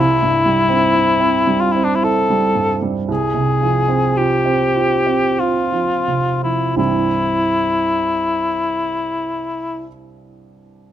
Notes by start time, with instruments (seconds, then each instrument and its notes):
0.00 grand piano C2, cor anglais E4
0.23 grand piano G2
0.46 grand piano G3
0.69 grand piano C4
0.95 grand piano E4
1.20 grand piano C4
1.47 grand piano G3
1.61 cor anglais F4
1.72 grand piano C4, cor anglais E4
1.84 cor anglais D4
1.95 cor anglais E4
2.03 grand piano E4, cor anglais A4
2.30 grand piano G3
2.56 grand piano G2
2.82 grand piano G3
3.09 grand piano C2, cor anglais G#4
3.34 grand piano C3
3.62 grand piano F3
3.88 grand piano C4
4.17 grand piano F4, cor anglais G4
4.46 grand piano C4
4.76 grand piano F4
5.07 grand piano C4
5.38 grand piano F4, cor anglais F4
5.72 grand piano F3
6.08 grand piano C3
6.43 grand piano F3, cor anglais E4
6.76 grand piano C2 G2 E3 G3 C4 E4, cor anglais E4